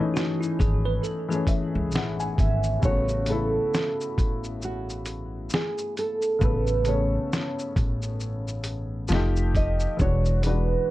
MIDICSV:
0, 0, Header, 1, 6, 480
1, 0, Start_track
1, 0, Key_signature, 3, "major"
1, 0, Tempo, 895522
1, 1516, Time_signature, 4, 2, 24, 8
1, 5846, End_track
2, 0, Start_track
2, 0, Title_t, "Nylon-string guitar"
2, 0, Program_c, 0, 24
2, 1287, Note_on_c, 0, 76, 97
2, 1525, Note_off_c, 0, 76, 0
2, 1528, Note_on_c, 0, 73, 97
2, 1769, Note_off_c, 0, 73, 0
2, 1771, Note_on_c, 0, 69, 95
2, 2462, Note_off_c, 0, 69, 0
2, 2490, Note_on_c, 0, 66, 82
2, 2967, Note_off_c, 0, 66, 0
2, 2969, Note_on_c, 0, 68, 83
2, 3186, Note_off_c, 0, 68, 0
2, 3209, Note_on_c, 0, 69, 84
2, 3449, Note_off_c, 0, 69, 0
2, 3450, Note_on_c, 0, 71, 91
2, 3666, Note_off_c, 0, 71, 0
2, 3691, Note_on_c, 0, 73, 85
2, 4142, Note_off_c, 0, 73, 0
2, 5127, Note_on_c, 0, 75, 104
2, 5345, Note_off_c, 0, 75, 0
2, 5368, Note_on_c, 0, 73, 107
2, 5606, Note_off_c, 0, 73, 0
2, 5608, Note_on_c, 0, 71, 91
2, 5842, Note_off_c, 0, 71, 0
2, 5846, End_track
3, 0, Start_track
3, 0, Title_t, "Tine electric piano"
3, 0, Program_c, 1, 4
3, 74, Note_on_c, 1, 66, 71
3, 210, Note_off_c, 1, 66, 0
3, 218, Note_on_c, 1, 64, 76
3, 311, Note_off_c, 1, 64, 0
3, 317, Note_on_c, 1, 68, 74
3, 451, Note_off_c, 1, 68, 0
3, 458, Note_on_c, 1, 71, 82
3, 551, Note_off_c, 1, 71, 0
3, 554, Note_on_c, 1, 69, 73
3, 689, Note_off_c, 1, 69, 0
3, 698, Note_on_c, 1, 68, 66
3, 1396, Note_off_c, 1, 68, 0
3, 5846, End_track
4, 0, Start_track
4, 0, Title_t, "Upright piano"
4, 0, Program_c, 2, 0
4, 0, Control_c, 2, 64, 127
4, 0, Note_on_c, 2, 52, 88
4, 0, Note_on_c, 2, 57, 73
4, 0, Note_on_c, 2, 61, 76
4, 0, Note_on_c, 2, 63, 91
4, 0, Note_on_c, 2, 68, 94
4, 468, Note_off_c, 2, 52, 0
4, 474, Note_off_c, 2, 57, 0
4, 479, Note_off_c, 2, 61, 0
4, 484, Note_off_c, 2, 63, 0
4, 688, Note_on_c, 2, 52, 85
4, 700, Note_on_c, 2, 57, 68
4, 710, Note_on_c, 2, 61, 73
4, 721, Note_off_c, 2, 68, 0
4, 721, Note_on_c, 2, 68, 84
4, 795, Note_on_c, 2, 76, 60
4, 1019, Note_off_c, 2, 76, 0
4, 1046, Note_on_c, 2, 78, 68
4, 1173, Note_off_c, 2, 78, 0
4, 1178, Note_on_c, 2, 80, 65
4, 1256, Note_off_c, 2, 52, 0
4, 1262, Note_off_c, 2, 57, 0
4, 1267, Note_off_c, 2, 61, 0
4, 1272, Note_off_c, 2, 68, 0
4, 1495, Note_off_c, 2, 80, 0
4, 1498, Note_on_c, 2, 49, 71
4, 1509, Note_on_c, 2, 57, 66
4, 1519, Note_on_c, 2, 59, 61
4, 1522, Control_c, 2, 64, 0
4, 1531, Note_on_c, 2, 66, 77
4, 1612, Control_c, 2, 64, 127
4, 1687, Note_off_c, 2, 49, 0
4, 1692, Note_off_c, 2, 57, 0
4, 1697, Note_off_c, 2, 59, 0
4, 1703, Note_off_c, 2, 66, 0
4, 1745, Note_on_c, 2, 49, 72
4, 1756, Note_on_c, 2, 57, 63
4, 1766, Note_on_c, 2, 59, 60
4, 1778, Note_on_c, 2, 64, 82
4, 2425, Note_off_c, 2, 49, 0
4, 2431, Note_off_c, 2, 57, 0
4, 2436, Note_off_c, 2, 59, 0
4, 2442, Note_off_c, 2, 64, 0
4, 3423, Note_on_c, 2, 49, 77
4, 3434, Note_on_c, 2, 57, 71
4, 3444, Note_on_c, 2, 59, 72
4, 3455, Note_on_c, 2, 69, 77
4, 3609, Note_off_c, 2, 49, 0
4, 3614, Note_off_c, 2, 57, 0
4, 3620, Note_off_c, 2, 59, 0
4, 3625, Note_off_c, 2, 69, 0
4, 3663, Note_on_c, 2, 49, 69
4, 3675, Note_on_c, 2, 57, 70
4, 3686, Note_on_c, 2, 59, 68
4, 3696, Note_on_c, 2, 61, 77
4, 4344, Note_off_c, 2, 49, 0
4, 4350, Note_off_c, 2, 57, 0
4, 4356, Note_off_c, 2, 59, 0
4, 4361, Note_off_c, 2, 61, 0
4, 4870, Note_on_c, 2, 53, 100
4, 4881, Note_on_c, 2, 57, 84
4, 4882, Control_c, 2, 64, 0
4, 4891, Note_on_c, 2, 63, 91
4, 4902, Note_on_c, 2, 67, 105
4, 4976, Control_c, 2, 64, 127
4, 5275, Note_off_c, 2, 53, 0
4, 5280, Note_off_c, 2, 57, 0
4, 5285, Note_off_c, 2, 63, 0
4, 5290, Note_off_c, 2, 67, 0
4, 5343, Note_on_c, 2, 52, 73
4, 5354, Note_on_c, 2, 56, 65
4, 5364, Control_c, 2, 64, 0
4, 5365, Note_on_c, 2, 62, 68
4, 5375, Note_on_c, 2, 66, 80
4, 5470, Control_c, 2, 64, 127
4, 5529, Note_off_c, 2, 52, 0
4, 5534, Note_off_c, 2, 56, 0
4, 5540, Note_off_c, 2, 62, 0
4, 5545, Note_off_c, 2, 66, 0
4, 5584, Note_on_c, 2, 52, 69
4, 5595, Note_on_c, 2, 56, 66
4, 5605, Note_on_c, 2, 62, 67
4, 5616, Note_on_c, 2, 66, 76
4, 5846, Note_off_c, 2, 52, 0
4, 5846, Note_off_c, 2, 56, 0
4, 5846, Note_off_c, 2, 62, 0
4, 5846, Note_off_c, 2, 66, 0
4, 5846, End_track
5, 0, Start_track
5, 0, Title_t, "Upright bass"
5, 0, Program_c, 3, 32
5, 322, Note_on_c, 3, 32, 89
5, 520, Note_off_c, 3, 32, 0
5, 939, Note_on_c, 3, 37, 84
5, 1040, Note_off_c, 3, 37, 0
5, 1040, Note_on_c, 3, 33, 82
5, 1239, Note_off_c, 3, 33, 0
5, 1277, Note_on_c, 3, 32, 81
5, 1477, Note_off_c, 3, 32, 0
5, 1517, Note_on_c, 3, 33, 99
5, 1917, Note_off_c, 3, 33, 0
5, 2241, Note_on_c, 3, 33, 77
5, 2937, Note_off_c, 3, 33, 0
5, 3438, Note_on_c, 3, 33, 114
5, 3838, Note_off_c, 3, 33, 0
5, 4161, Note_on_c, 3, 33, 93
5, 4857, Note_off_c, 3, 33, 0
5, 4878, Note_on_c, 3, 29, 100
5, 5278, Note_off_c, 3, 29, 0
5, 5358, Note_on_c, 3, 28, 109
5, 5758, Note_off_c, 3, 28, 0
5, 5846, End_track
6, 0, Start_track
6, 0, Title_t, "Drums"
6, 88, Note_on_c, 9, 82, 65
6, 90, Note_on_c, 9, 38, 97
6, 141, Note_off_c, 9, 82, 0
6, 143, Note_off_c, 9, 38, 0
6, 229, Note_on_c, 9, 82, 46
6, 283, Note_off_c, 9, 82, 0
6, 320, Note_on_c, 9, 36, 97
6, 325, Note_on_c, 9, 42, 62
6, 325, Note_on_c, 9, 82, 44
6, 374, Note_off_c, 9, 36, 0
6, 379, Note_off_c, 9, 42, 0
6, 379, Note_off_c, 9, 82, 0
6, 557, Note_on_c, 9, 82, 51
6, 611, Note_off_c, 9, 82, 0
6, 705, Note_on_c, 9, 82, 47
6, 758, Note_off_c, 9, 82, 0
6, 787, Note_on_c, 9, 36, 82
6, 790, Note_on_c, 9, 42, 71
6, 790, Note_on_c, 9, 82, 52
6, 840, Note_off_c, 9, 36, 0
6, 844, Note_off_c, 9, 42, 0
6, 844, Note_off_c, 9, 82, 0
6, 1027, Note_on_c, 9, 82, 69
6, 1048, Note_on_c, 9, 38, 110
6, 1081, Note_off_c, 9, 82, 0
6, 1102, Note_off_c, 9, 38, 0
6, 1178, Note_on_c, 9, 82, 48
6, 1232, Note_off_c, 9, 82, 0
6, 1276, Note_on_c, 9, 36, 84
6, 1280, Note_on_c, 9, 42, 68
6, 1280, Note_on_c, 9, 82, 50
6, 1330, Note_off_c, 9, 36, 0
6, 1333, Note_off_c, 9, 42, 0
6, 1333, Note_off_c, 9, 82, 0
6, 1412, Note_on_c, 9, 82, 54
6, 1466, Note_off_c, 9, 82, 0
6, 1516, Note_on_c, 9, 36, 115
6, 1516, Note_on_c, 9, 82, 64
6, 1570, Note_off_c, 9, 36, 0
6, 1570, Note_off_c, 9, 82, 0
6, 1654, Note_on_c, 9, 82, 49
6, 1708, Note_off_c, 9, 82, 0
6, 1749, Note_on_c, 9, 42, 68
6, 1749, Note_on_c, 9, 82, 47
6, 1802, Note_off_c, 9, 42, 0
6, 1802, Note_off_c, 9, 82, 0
6, 2006, Note_on_c, 9, 82, 68
6, 2008, Note_on_c, 9, 38, 100
6, 2059, Note_off_c, 9, 82, 0
6, 2061, Note_off_c, 9, 38, 0
6, 2148, Note_on_c, 9, 82, 49
6, 2202, Note_off_c, 9, 82, 0
6, 2240, Note_on_c, 9, 36, 92
6, 2243, Note_on_c, 9, 42, 67
6, 2243, Note_on_c, 9, 82, 45
6, 2293, Note_off_c, 9, 36, 0
6, 2297, Note_off_c, 9, 42, 0
6, 2297, Note_off_c, 9, 82, 0
6, 2380, Note_on_c, 9, 82, 46
6, 2434, Note_off_c, 9, 82, 0
6, 2476, Note_on_c, 9, 82, 52
6, 2530, Note_off_c, 9, 82, 0
6, 2624, Note_on_c, 9, 82, 47
6, 2678, Note_off_c, 9, 82, 0
6, 2710, Note_on_c, 9, 42, 73
6, 2710, Note_on_c, 9, 82, 54
6, 2764, Note_off_c, 9, 42, 0
6, 2764, Note_off_c, 9, 82, 0
6, 2947, Note_on_c, 9, 82, 73
6, 2968, Note_on_c, 9, 38, 113
6, 3001, Note_off_c, 9, 82, 0
6, 3022, Note_off_c, 9, 38, 0
6, 3098, Note_on_c, 9, 82, 53
6, 3152, Note_off_c, 9, 82, 0
6, 3201, Note_on_c, 9, 42, 69
6, 3201, Note_on_c, 9, 82, 51
6, 3255, Note_off_c, 9, 42, 0
6, 3255, Note_off_c, 9, 82, 0
6, 3333, Note_on_c, 9, 82, 53
6, 3387, Note_off_c, 9, 82, 0
6, 3437, Note_on_c, 9, 36, 110
6, 3438, Note_on_c, 9, 82, 65
6, 3491, Note_off_c, 9, 36, 0
6, 3492, Note_off_c, 9, 82, 0
6, 3575, Note_on_c, 9, 82, 49
6, 3629, Note_off_c, 9, 82, 0
6, 3671, Note_on_c, 9, 42, 64
6, 3671, Note_on_c, 9, 82, 49
6, 3724, Note_off_c, 9, 42, 0
6, 3724, Note_off_c, 9, 82, 0
6, 3928, Note_on_c, 9, 82, 63
6, 3930, Note_on_c, 9, 38, 103
6, 3982, Note_off_c, 9, 82, 0
6, 3984, Note_off_c, 9, 38, 0
6, 4069, Note_on_c, 9, 82, 49
6, 4122, Note_off_c, 9, 82, 0
6, 4160, Note_on_c, 9, 36, 93
6, 4163, Note_on_c, 9, 42, 66
6, 4163, Note_on_c, 9, 82, 49
6, 4214, Note_off_c, 9, 36, 0
6, 4217, Note_off_c, 9, 42, 0
6, 4217, Note_off_c, 9, 82, 0
6, 4300, Note_on_c, 9, 82, 48
6, 4354, Note_off_c, 9, 82, 0
6, 4396, Note_on_c, 9, 82, 53
6, 4450, Note_off_c, 9, 82, 0
6, 4545, Note_on_c, 9, 82, 45
6, 4598, Note_off_c, 9, 82, 0
6, 4630, Note_on_c, 9, 42, 75
6, 4630, Note_on_c, 9, 82, 51
6, 4683, Note_off_c, 9, 42, 0
6, 4683, Note_off_c, 9, 82, 0
6, 4867, Note_on_c, 9, 82, 76
6, 4888, Note_on_c, 9, 38, 111
6, 4921, Note_off_c, 9, 82, 0
6, 4942, Note_off_c, 9, 38, 0
6, 5018, Note_on_c, 9, 82, 53
6, 5072, Note_off_c, 9, 82, 0
6, 5117, Note_on_c, 9, 36, 90
6, 5121, Note_on_c, 9, 42, 69
6, 5121, Note_on_c, 9, 82, 49
6, 5171, Note_off_c, 9, 36, 0
6, 5174, Note_off_c, 9, 42, 0
6, 5174, Note_off_c, 9, 82, 0
6, 5252, Note_on_c, 9, 82, 53
6, 5306, Note_off_c, 9, 82, 0
6, 5357, Note_on_c, 9, 36, 110
6, 5357, Note_on_c, 9, 82, 68
6, 5411, Note_off_c, 9, 36, 0
6, 5411, Note_off_c, 9, 82, 0
6, 5496, Note_on_c, 9, 82, 49
6, 5549, Note_off_c, 9, 82, 0
6, 5591, Note_on_c, 9, 42, 66
6, 5591, Note_on_c, 9, 82, 47
6, 5645, Note_off_c, 9, 42, 0
6, 5645, Note_off_c, 9, 82, 0
6, 5846, End_track
0, 0, End_of_file